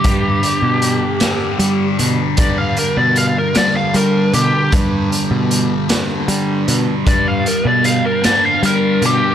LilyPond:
<<
  \new Staff \with { instrumentName = "Lead electric guitar" } { \time 6/8 \key g \major \tempo 4. = 51 g'2~ g'8 r8 | d''16 f''16 bes'16 d''16 f''16 bes'16 d''16 f''16 bes'8 g'8 | r2. | d''16 f''16 bes'16 d''16 f''16 bes'16 d''16 f''16 bes'8 g'8 | }
  \new Staff \with { instrumentName = "Distorted electric guitar" } { \clef bass \time 6/8 \key g \major <g, d g>4. <g, d g>4. | <g, d g>4. <g, d g>4. | <g, d g>4. <g, d g>4. | <g, d g>4. <g, d g>4. | }
  \new Staff \with { instrumentName = "Picked electric bass" } { \clef bass \time 6/8 \key g \major g,8 r16 b,8 r8. g8 b,16 r16 | g,8 r16 b,8 r8. g8 b,16 r16 | g,8 r16 b,8 r8. g8 b,16 r16 | g,8 r16 b,8 r8. g8 b,16 r16 | }
  \new DrumStaff \with { instrumentName = "Drums" } \drummode { \time 6/8 <hh bd>8 hh8 hh8 <hh sn>8 hh8 hh8 | <hh bd>8 hh8 hh8 <hh sn>8 hh8 hh8 | <hh bd>8 hh8 hh8 <hh sn>8 hh8 hh8 | <hh bd>8 hh8 hh8 <hh sn>8 hh8 hh8 | }
>>